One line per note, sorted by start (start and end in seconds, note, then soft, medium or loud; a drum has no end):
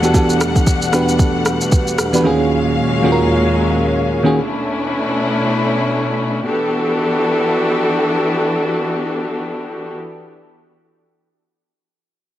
0.00 2.21 E2 medium
0.00 2.21 B2 medium
0.00 0.02 E3 medium
0.00 0.12 E3 medium
0.00 2.21 G3 medium
0.00 2.21 A3 medium
0.00 0.03 B3 medium
0.00 0.12 B3 medium
0.00 0.03 D4 medium
0.00 2.21 D4 medium
0.00 0.12 D4 medium
0.00 0.04 F#4 medium
0.00 0.12 F#4 medium
0.00 0.04 G4 medium
0.00 0.05 A4 loud
0.00 2.21 F#5 medium
0.00 shaker soft
0.04 0.13 G4 medium
0.04 0.13 A4 loud
0.13 0.79 E3 medium
0.13 0.79 B3 medium
0.13 0.79 D4 medium
0.13 0.79 F#4 medium
0.13 0.80 G4 medium
0.13 0.80 A4 loud
0.13 kick loud
0.13 shaker medium
0.30 shaker medium
0.41 cross-stick medium
0.41 shaker medium
0.56 kick medium
0.56 shaker medium
0.67 kick medium
0.67 shaker medium
0.82 shaker medium
0.92 1.78 E3 medium
0.92 1.78 B3 medium
0.92 1.78 D4 medium
0.92 1.79 F#4 medium
0.92 1.79 G4 medium
0.92 1.79 B4 medium
0.92 cross-stick medium
0.92 shaker loud
1.09 shaker medium
1.19 kick loud
1.19 shaker medium
1.46 cross-stick medium
1.46 shaker medium
1.61 shaker medium
1.72 kick medium
1.72 shaker medium
1.87 shaker soft
1.98 cross-stick medium
1.98 shaker medium
2.13 2.22 E3 medium
2.13 2.22 B3 medium
2.13 2.23 D4 medium
2.13 2.23 F#4 medium
2.13 2.23 G4 medium
2.13 2.23 B4 medium
2.13 shaker medium
2.24 4.33 D#2 medium
2.24 4.33 A#2 medium
2.24 2.89 D#3 medium
2.24 4.33 F#3 medium
2.24 4.33 G#3 medium
2.24 2.89 A#3 medium
2.24 2.90 C#4 medium
2.24 4.33 C#4 medium
2.24 2.90 F4 medium
2.24 2.90 F#4 medium
2.24 2.91 G#4 loud
2.24 4.33 F5 medium
3.03 3.88 D#3 medium
3.03 3.89 A#3 medium
3.03 3.89 C#4 medium
3.03 3.89 F4 medium
3.03 3.89 F#4 medium
3.03 3.12 G#4 medium
3.12 3.93 A#4 loud
4.23 4.33 D#3 medium
4.23 4.33 A#3 medium
4.23 4.33 C#4 medium
4.23 4.33 F4 medium
4.23 4.34 F#4 medium
4.23 4.34 G#4 loud
4.35 6.44 B2 medium
4.35 6.44 A3 medium
4.35 6.44 C#4 medium
4.35 6.44 D4 medium
4.35 6.44 E4 medium
6.46 9.95 E3 medium
6.46 9.95 B3 medium
6.46 9.95 D4 medium
6.46 9.95 F#4 medium
6.46 9.95 G4 medium
6.46 9.95 A4 medium